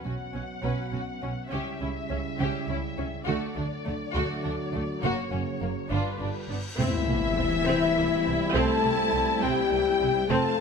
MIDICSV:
0, 0, Header, 1, 12, 480
1, 0, Start_track
1, 0, Tempo, 585938
1, 1244, Time_signature, 6, 3, 24, 8
1, 8686, End_track
2, 0, Start_track
2, 0, Title_t, "Flute"
2, 0, Program_c, 0, 73
2, 5563, Note_on_c, 0, 76, 82
2, 6970, Note_off_c, 0, 76, 0
2, 7000, Note_on_c, 0, 81, 91
2, 7722, Note_on_c, 0, 79, 67
2, 7734, Note_off_c, 0, 81, 0
2, 8438, Note_off_c, 0, 79, 0
2, 8443, Note_on_c, 0, 81, 102
2, 8686, Note_off_c, 0, 81, 0
2, 8686, End_track
3, 0, Start_track
3, 0, Title_t, "Violin section"
3, 0, Program_c, 1, 48
3, 0, Note_on_c, 1, 78, 29
3, 1213, Note_off_c, 1, 78, 0
3, 1245, Note_on_c, 1, 76, 39
3, 2673, Note_on_c, 1, 74, 49
3, 2686, Note_off_c, 1, 76, 0
3, 4091, Note_off_c, 1, 74, 0
3, 4114, Note_on_c, 1, 73, 44
3, 4840, Note_off_c, 1, 73, 0
3, 4840, Note_on_c, 1, 71, 39
3, 5400, Note_off_c, 1, 71, 0
3, 5569, Note_on_c, 1, 76, 77
3, 6973, Note_off_c, 1, 76, 0
3, 7010, Note_on_c, 1, 81, 76
3, 7711, Note_off_c, 1, 81, 0
3, 7725, Note_on_c, 1, 79, 77
3, 8443, Note_off_c, 1, 79, 0
3, 8449, Note_on_c, 1, 81, 88
3, 8686, Note_off_c, 1, 81, 0
3, 8686, End_track
4, 0, Start_track
4, 0, Title_t, "French horn section"
4, 0, Program_c, 2, 60
4, 0, Note_on_c, 2, 61, 35
4, 0, Note_on_c, 2, 66, 37
4, 1214, Note_off_c, 2, 66, 0
4, 1244, Note_on_c, 2, 64, 42
4, 2653, Note_off_c, 2, 64, 0
4, 2657, Note_off_c, 2, 61, 0
4, 2680, Note_on_c, 2, 66, 54
4, 2681, Note_on_c, 2, 57, 55
4, 4091, Note_off_c, 2, 57, 0
4, 4116, Note_on_c, 2, 58, 54
4, 4808, Note_off_c, 2, 58, 0
4, 4811, Note_off_c, 2, 66, 0
4, 4837, Note_on_c, 2, 59, 46
4, 4841, Note_on_c, 2, 65, 46
4, 5288, Note_off_c, 2, 59, 0
4, 5291, Note_off_c, 2, 65, 0
4, 5576, Note_on_c, 2, 64, 94
4, 6976, Note_off_c, 2, 64, 0
4, 7002, Note_on_c, 2, 69, 91
4, 7707, Note_off_c, 2, 69, 0
4, 7721, Note_on_c, 2, 67, 79
4, 8429, Note_on_c, 2, 69, 106
4, 8441, Note_off_c, 2, 67, 0
4, 8686, Note_off_c, 2, 69, 0
4, 8686, End_track
5, 0, Start_track
5, 0, Title_t, "Violin section"
5, 0, Program_c, 3, 48
5, 33, Note_on_c, 3, 66, 29
5, 98, Note_off_c, 3, 66, 0
5, 269, Note_on_c, 3, 61, 28
5, 334, Note_off_c, 3, 61, 0
5, 518, Note_on_c, 3, 71, 37
5, 744, Note_off_c, 3, 71, 0
5, 764, Note_on_c, 3, 66, 34
5, 830, Note_off_c, 3, 66, 0
5, 1001, Note_on_c, 3, 61, 35
5, 1066, Note_off_c, 3, 61, 0
5, 1239, Note_on_c, 3, 67, 45
5, 1465, Note_off_c, 3, 67, 0
5, 1485, Note_on_c, 3, 64, 33
5, 1551, Note_off_c, 3, 64, 0
5, 1725, Note_on_c, 3, 61, 39
5, 1791, Note_off_c, 3, 61, 0
5, 1959, Note_on_c, 3, 67, 52
5, 2185, Note_off_c, 3, 67, 0
5, 2198, Note_on_c, 3, 64, 47
5, 2263, Note_off_c, 3, 64, 0
5, 2435, Note_on_c, 3, 61, 38
5, 2501, Note_off_c, 3, 61, 0
5, 2671, Note_on_c, 3, 66, 58
5, 2901, Note_off_c, 3, 66, 0
5, 2920, Note_on_c, 3, 62, 42
5, 2985, Note_off_c, 3, 62, 0
5, 3152, Note_on_c, 3, 57, 45
5, 3217, Note_off_c, 3, 57, 0
5, 3388, Note_on_c, 3, 66, 65
5, 3620, Note_off_c, 3, 66, 0
5, 3637, Note_on_c, 3, 62, 51
5, 3703, Note_off_c, 3, 62, 0
5, 3876, Note_on_c, 3, 57, 51
5, 3941, Note_off_c, 3, 57, 0
5, 4119, Note_on_c, 3, 66, 66
5, 4346, Note_off_c, 3, 66, 0
5, 4358, Note_on_c, 3, 61, 44
5, 4424, Note_off_c, 3, 61, 0
5, 4598, Note_on_c, 3, 58, 43
5, 4664, Note_off_c, 3, 58, 0
5, 4840, Note_on_c, 3, 65, 50
5, 5066, Note_off_c, 3, 65, 0
5, 5087, Note_on_c, 3, 62, 38
5, 5152, Note_off_c, 3, 62, 0
5, 5333, Note_on_c, 3, 59, 40
5, 5398, Note_off_c, 3, 59, 0
5, 5559, Note_on_c, 3, 76, 88
5, 6968, Note_off_c, 3, 76, 0
5, 7003, Note_on_c, 3, 81, 89
5, 7708, Note_off_c, 3, 81, 0
5, 7721, Note_on_c, 3, 79, 71
5, 8440, Note_off_c, 3, 79, 0
5, 8445, Note_on_c, 3, 81, 93
5, 8686, Note_off_c, 3, 81, 0
5, 8686, End_track
6, 0, Start_track
6, 0, Title_t, "Viola section"
6, 0, Program_c, 4, 48
6, 45, Note_on_c, 4, 61, 29
6, 111, Note_off_c, 4, 61, 0
6, 284, Note_on_c, 4, 61, 29
6, 350, Note_off_c, 4, 61, 0
6, 516, Note_on_c, 4, 61, 32
6, 743, Note_off_c, 4, 61, 0
6, 753, Note_on_c, 4, 61, 26
6, 819, Note_off_c, 4, 61, 0
6, 996, Note_on_c, 4, 61, 31
6, 1061, Note_off_c, 4, 61, 0
6, 1230, Note_on_c, 4, 61, 43
6, 1460, Note_off_c, 4, 61, 0
6, 1478, Note_on_c, 4, 61, 33
6, 1544, Note_off_c, 4, 61, 0
6, 1713, Note_on_c, 4, 61, 36
6, 1779, Note_off_c, 4, 61, 0
6, 1960, Note_on_c, 4, 61, 43
6, 2186, Note_off_c, 4, 61, 0
6, 2195, Note_on_c, 4, 61, 38
6, 2260, Note_off_c, 4, 61, 0
6, 2439, Note_on_c, 4, 61, 45
6, 2505, Note_off_c, 4, 61, 0
6, 2673, Note_on_c, 4, 57, 60
6, 2902, Note_off_c, 4, 57, 0
6, 2913, Note_on_c, 4, 57, 38
6, 2978, Note_off_c, 4, 57, 0
6, 3156, Note_on_c, 4, 57, 41
6, 3222, Note_off_c, 4, 57, 0
6, 3399, Note_on_c, 4, 57, 53
6, 3623, Note_off_c, 4, 57, 0
6, 3633, Note_on_c, 4, 57, 46
6, 3699, Note_off_c, 4, 57, 0
6, 3877, Note_on_c, 4, 57, 50
6, 3943, Note_off_c, 4, 57, 0
6, 4111, Note_on_c, 4, 58, 57
6, 4342, Note_off_c, 4, 58, 0
6, 4356, Note_on_c, 4, 58, 45
6, 4421, Note_off_c, 4, 58, 0
6, 4599, Note_on_c, 4, 58, 36
6, 4664, Note_off_c, 4, 58, 0
6, 4832, Note_on_c, 4, 62, 48
6, 5062, Note_off_c, 4, 62, 0
6, 5075, Note_on_c, 4, 62, 36
6, 5141, Note_off_c, 4, 62, 0
6, 5325, Note_on_c, 4, 62, 35
6, 5391, Note_off_c, 4, 62, 0
6, 5560, Note_on_c, 4, 64, 74
6, 5562, Note_on_c, 4, 60, 69
6, 5787, Note_off_c, 4, 60, 0
6, 5810, Note_on_c, 4, 58, 56
6, 5876, Note_off_c, 4, 58, 0
6, 6035, Note_on_c, 4, 60, 52
6, 6100, Note_off_c, 4, 60, 0
6, 6282, Note_on_c, 4, 60, 79
6, 6506, Note_off_c, 4, 60, 0
6, 6519, Note_on_c, 4, 58, 59
6, 6584, Note_off_c, 4, 58, 0
6, 6760, Note_on_c, 4, 60, 54
6, 6825, Note_off_c, 4, 60, 0
6, 6995, Note_on_c, 4, 60, 92
6, 7222, Note_off_c, 4, 60, 0
6, 7236, Note_on_c, 4, 58, 58
6, 7301, Note_off_c, 4, 58, 0
6, 7481, Note_on_c, 4, 60, 57
6, 7546, Note_off_c, 4, 60, 0
6, 7720, Note_on_c, 4, 60, 67
6, 7944, Note_off_c, 4, 60, 0
6, 7960, Note_on_c, 4, 58, 59
6, 8025, Note_off_c, 4, 58, 0
6, 8206, Note_on_c, 4, 60, 60
6, 8272, Note_off_c, 4, 60, 0
6, 8406, Note_off_c, 4, 64, 0
6, 8437, Note_on_c, 4, 65, 78
6, 8438, Note_on_c, 4, 60, 83
6, 8662, Note_off_c, 4, 60, 0
6, 8686, Note_off_c, 4, 65, 0
6, 8686, End_track
7, 0, Start_track
7, 0, Title_t, "Trombone section"
7, 0, Program_c, 5, 61
7, 0, Note_on_c, 5, 47, 40
7, 0, Note_on_c, 5, 54, 41
7, 1205, Note_off_c, 5, 54, 0
7, 1207, Note_off_c, 5, 47, 0
7, 1231, Note_on_c, 5, 55, 44
7, 1236, Note_on_c, 5, 49, 47
7, 2646, Note_off_c, 5, 55, 0
7, 2649, Note_off_c, 5, 49, 0
7, 2684, Note_on_c, 5, 50, 59
7, 2690, Note_on_c, 5, 54, 60
7, 4093, Note_off_c, 5, 50, 0
7, 4123, Note_on_c, 5, 49, 62
7, 4812, Note_off_c, 5, 49, 0
7, 4815, Note_off_c, 5, 54, 0
7, 4842, Note_on_c, 5, 55, 41
7, 4844, Note_on_c, 5, 50, 47
7, 5291, Note_off_c, 5, 55, 0
7, 5292, Note_off_c, 5, 50, 0
7, 5556, Note_on_c, 5, 55, 81
7, 5561, Note_on_c, 5, 60, 80
7, 8404, Note_off_c, 5, 55, 0
7, 8407, Note_off_c, 5, 60, 0
7, 8441, Note_on_c, 5, 60, 80
7, 8445, Note_on_c, 5, 53, 79
7, 8686, Note_off_c, 5, 53, 0
7, 8686, Note_off_c, 5, 60, 0
7, 8686, End_track
8, 0, Start_track
8, 0, Title_t, "Cello section"
8, 0, Program_c, 6, 48
8, 37, Note_on_c, 6, 47, 27
8, 103, Note_off_c, 6, 47, 0
8, 281, Note_on_c, 6, 47, 30
8, 347, Note_off_c, 6, 47, 0
8, 520, Note_on_c, 6, 47, 42
8, 585, Note_off_c, 6, 47, 0
8, 759, Note_on_c, 6, 47, 30
8, 824, Note_off_c, 6, 47, 0
8, 1003, Note_on_c, 6, 47, 33
8, 1069, Note_off_c, 6, 47, 0
8, 1245, Note_on_c, 6, 49, 41
8, 1311, Note_off_c, 6, 49, 0
8, 1486, Note_on_c, 6, 49, 32
8, 1552, Note_off_c, 6, 49, 0
8, 1716, Note_on_c, 6, 49, 35
8, 1782, Note_off_c, 6, 49, 0
8, 1960, Note_on_c, 6, 49, 56
8, 2026, Note_off_c, 6, 49, 0
8, 2195, Note_on_c, 6, 49, 41
8, 2261, Note_off_c, 6, 49, 0
8, 2440, Note_on_c, 6, 49, 37
8, 2506, Note_off_c, 6, 49, 0
8, 2685, Note_on_c, 6, 50, 62
8, 2750, Note_off_c, 6, 50, 0
8, 2924, Note_on_c, 6, 50, 40
8, 2989, Note_off_c, 6, 50, 0
8, 3166, Note_on_c, 6, 50, 47
8, 3231, Note_off_c, 6, 50, 0
8, 3402, Note_on_c, 6, 50, 56
8, 3468, Note_off_c, 6, 50, 0
8, 3634, Note_on_c, 6, 50, 49
8, 3700, Note_off_c, 6, 50, 0
8, 3871, Note_on_c, 6, 50, 47
8, 3936, Note_off_c, 6, 50, 0
8, 4118, Note_on_c, 6, 42, 66
8, 4184, Note_off_c, 6, 42, 0
8, 4355, Note_on_c, 6, 42, 40
8, 4421, Note_off_c, 6, 42, 0
8, 4602, Note_on_c, 6, 42, 41
8, 4667, Note_off_c, 6, 42, 0
8, 4838, Note_on_c, 6, 43, 52
8, 4904, Note_off_c, 6, 43, 0
8, 5083, Note_on_c, 6, 43, 38
8, 5148, Note_off_c, 6, 43, 0
8, 5324, Note_on_c, 6, 43, 34
8, 5389, Note_off_c, 6, 43, 0
8, 5557, Note_on_c, 6, 52, 72
8, 6967, Note_off_c, 6, 52, 0
8, 7009, Note_on_c, 6, 57, 83
8, 7711, Note_off_c, 6, 57, 0
8, 7727, Note_on_c, 6, 55, 68
8, 8444, Note_off_c, 6, 55, 0
8, 8448, Note_on_c, 6, 57, 83
8, 8686, Note_off_c, 6, 57, 0
8, 8686, End_track
9, 0, Start_track
9, 0, Title_t, "Double bass section"
9, 0, Program_c, 7, 48
9, 42, Note_on_c, 7, 35, 30
9, 107, Note_off_c, 7, 35, 0
9, 278, Note_on_c, 7, 35, 28
9, 344, Note_off_c, 7, 35, 0
9, 516, Note_on_c, 7, 35, 40
9, 582, Note_off_c, 7, 35, 0
9, 760, Note_on_c, 7, 35, 33
9, 826, Note_off_c, 7, 35, 0
9, 1004, Note_on_c, 7, 35, 30
9, 1070, Note_off_c, 7, 35, 0
9, 1246, Note_on_c, 7, 37, 45
9, 1311, Note_off_c, 7, 37, 0
9, 1483, Note_on_c, 7, 37, 37
9, 1548, Note_off_c, 7, 37, 0
9, 1722, Note_on_c, 7, 37, 33
9, 1787, Note_off_c, 7, 37, 0
9, 1963, Note_on_c, 7, 37, 48
9, 2029, Note_off_c, 7, 37, 0
9, 2196, Note_on_c, 7, 37, 41
9, 2261, Note_off_c, 7, 37, 0
9, 2440, Note_on_c, 7, 37, 43
9, 2505, Note_off_c, 7, 37, 0
9, 2682, Note_on_c, 7, 38, 58
9, 2748, Note_off_c, 7, 38, 0
9, 2920, Note_on_c, 7, 38, 44
9, 2986, Note_off_c, 7, 38, 0
9, 3163, Note_on_c, 7, 38, 44
9, 3228, Note_off_c, 7, 38, 0
9, 3404, Note_on_c, 7, 38, 63
9, 3469, Note_off_c, 7, 38, 0
9, 3649, Note_on_c, 7, 38, 47
9, 3714, Note_off_c, 7, 38, 0
9, 3888, Note_on_c, 7, 38, 43
9, 3953, Note_off_c, 7, 38, 0
9, 4127, Note_on_c, 7, 30, 61
9, 4193, Note_off_c, 7, 30, 0
9, 4365, Note_on_c, 7, 30, 45
9, 4431, Note_off_c, 7, 30, 0
9, 4601, Note_on_c, 7, 30, 37
9, 4667, Note_off_c, 7, 30, 0
9, 4838, Note_on_c, 7, 31, 56
9, 4904, Note_off_c, 7, 31, 0
9, 5081, Note_on_c, 7, 31, 37
9, 5146, Note_off_c, 7, 31, 0
9, 5315, Note_on_c, 7, 31, 36
9, 5380, Note_off_c, 7, 31, 0
9, 5552, Note_on_c, 7, 36, 75
9, 5618, Note_off_c, 7, 36, 0
9, 5798, Note_on_c, 7, 36, 60
9, 5864, Note_off_c, 7, 36, 0
9, 6040, Note_on_c, 7, 36, 47
9, 6106, Note_off_c, 7, 36, 0
9, 6284, Note_on_c, 7, 36, 71
9, 6349, Note_off_c, 7, 36, 0
9, 6522, Note_on_c, 7, 36, 55
9, 6587, Note_off_c, 7, 36, 0
9, 6765, Note_on_c, 7, 36, 50
9, 6831, Note_off_c, 7, 36, 0
9, 7004, Note_on_c, 7, 36, 80
9, 7070, Note_off_c, 7, 36, 0
9, 7239, Note_on_c, 7, 36, 62
9, 7305, Note_off_c, 7, 36, 0
9, 7476, Note_on_c, 7, 36, 53
9, 7542, Note_off_c, 7, 36, 0
9, 7721, Note_on_c, 7, 36, 77
9, 7787, Note_off_c, 7, 36, 0
9, 7960, Note_on_c, 7, 36, 50
9, 8026, Note_off_c, 7, 36, 0
9, 8205, Note_on_c, 7, 36, 57
9, 8270, Note_off_c, 7, 36, 0
9, 8439, Note_on_c, 7, 29, 85
9, 8504, Note_off_c, 7, 29, 0
9, 8686, End_track
10, 0, Start_track
10, 0, Title_t, "Cymbal swell"
10, 0, Program_c, 8, 119
10, 4115, Note_on_c, 8, 60, 55
10, 5560, Note_off_c, 8, 60, 0
10, 8686, End_track
11, 0, Start_track
11, 0, Title_t, "Sub drop"
11, 0, Program_c, 10, 103
11, 5559, Note_on_c, 10, 60, 81
11, 7001, Note_off_c, 10, 60, 0
11, 8686, End_track
12, 0, Start_track
12, 0, Title_t, "Tam-tam"
12, 5562, Note_on_c, 9, 52, 58
12, 5644, Note_off_c, 9, 52, 0
12, 8686, End_track
0, 0, End_of_file